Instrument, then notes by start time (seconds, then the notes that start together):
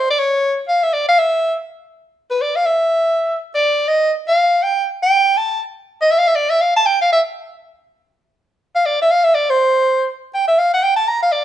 soprano saxophone
0.10 D5
0.19 C#5
0.68 F5
0.83 E5
0.93 D5
1.08 F5
1.19 E5
2.31 B4
2.42 D5
2.56 F5
2.66 E5
3.55 D5
3.88 D#5
4.28 F5
4.63 G5
5.03 G5
5.37 A5
6.02 D#5
6.11 E5
6.18 F5
6.27 E5
6.35 D5
6.50 E5
6.61 F5
6.76 A5
6.86 G5
7.01 F5
7.12 E5
8.75 F5
8.86 D5
9.02 E5
9.11 F5
9.24 E5
9.34 D5
9.50 C5
10.34 G5
10.48 E5
10.58 F5
10.74 F#5
10.83 G5
10.96 A5
11.08 A#5
11.22 F5
11.32 D5